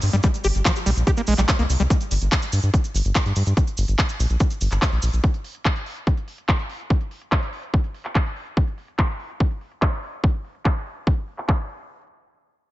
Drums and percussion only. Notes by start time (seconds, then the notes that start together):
0.02 open hi-hat, cabasa
0.13 closed hi-hat, cabasa
0.23 kick, closed hi-hat, cabasa
0.34 closed hi-hat, cabasa
0.44 open hi-hat, cabasa
0.55 closed hi-hat, cabasa
0.65 kick, clap, closed hi-hat, cabasa
0.76 closed hi-hat, cabasa
0.86 open hi-hat, cabasa
0.97 closed hi-hat, cabasa
1.07 kick, closed hi-hat, cabasa
1.17 closed hi-hat, cabasa
1.27 open hi-hat, cabasa
1.38 clap, closed hi-hat, cabasa
1.49 kick, clap, closed hi-hat, cabasa
1.59 closed hi-hat
1.69 open hi-hat, cabasa
1.80 closed hi-hat, cabasa
1.90 kick, closed hi-hat, cabasa
2.00 closed hi-hat, cabasa
2.11 open hi-hat, cabasa
2.21 closed hi-hat, cabasa
2.32 kick, clap, closed hi-hat, cabasa
2.42 closed hi-hat, cabasa
2.52 open hi-hat, cabasa
2.63 closed hi-hat, cabasa
2.74 kick, closed hi-hat, cabasa
2.84 closed hi-hat, cabasa
2.94 open hi-hat, cabasa
3.05 closed hi-hat, cabasa
3.15 kick, clap, closed hi-hat, cabasa
3.26 closed hi-hat
3.36 open hi-hat, cabasa
3.47 closed hi-hat, cabasa
3.57 kick, closed hi-hat, cabasa
3.67 closed hi-hat, cabasa
3.77 open hi-hat, cabasa
3.88 closed hi-hat, cabasa
3.99 kick, clap, closed hi-hat, cabasa
4.09 closed hi-hat, cabasa
4.20 open hi-hat, cabasa
4.30 closed hi-hat, cabasa
4.40 kick, closed hi-hat, cabasa
4.50 closed hi-hat, cabasa
4.61 open hi-hat, cabasa
4.72 clap, cabasa
4.82 kick, clap, closed hi-hat, cabasa
4.92 closed hi-hat
5.02 open hi-hat, cabasa
5.13 closed hi-hat, cabasa
5.24 kick, closed hi-hat
5.34 closed hi-hat
5.44 open hi-hat
5.55 closed hi-hat
5.65 kick, clap, closed hi-hat
5.76 closed hi-hat
5.86 open hi-hat
5.97 closed hi-hat
6.07 kick, closed hi-hat
6.17 closed hi-hat
6.28 open hi-hat
6.38 closed hi-hat
6.49 kick, clap, closed hi-hat
6.59 closed hi-hat
6.69 open hi-hat
6.80 closed hi-hat
6.90 kick, closed hi-hat
7.01 closed hi-hat
7.11 open hi-hat
7.22 closed hi-hat
7.32 kick, clap, closed hi-hat
7.42 closed hi-hat
7.53 open hi-hat
7.63 closed hi-hat
7.74 kick, closed hi-hat
7.84 closed hi-hat
7.94 open hi-hat
8.05 clap, closed hi-hat
8.15 kick, clap
8.26 closed hi-hat
8.36 open hi-hat
8.47 closed hi-hat
8.57 kick
8.67 closed hi-hat
8.78 open hi-hat
8.88 closed hi-hat
8.99 kick, clap
9.09 closed hi-hat
9.20 open hi-hat
9.30 closed hi-hat
9.40 kick
9.51 closed hi-hat
9.61 open hi-hat
9.72 closed hi-hat
9.82 kick, clap
9.92 closed hi-hat
10.03 open hi-hat
10.13 closed hi-hat
10.24 kick
10.34 closed hi-hat
10.45 open hi-hat
10.55 closed hi-hat
10.65 kick, clap
10.76 closed hi-hat
10.86 open hi-hat
10.97 closed hi-hat
11.07 kick
11.17 closed hi-hat
11.28 open hi-hat
11.38 clap
11.49 kick, clap
11.59 closed hi-hat
11.69 open hi-hat
11.80 closed hi-hat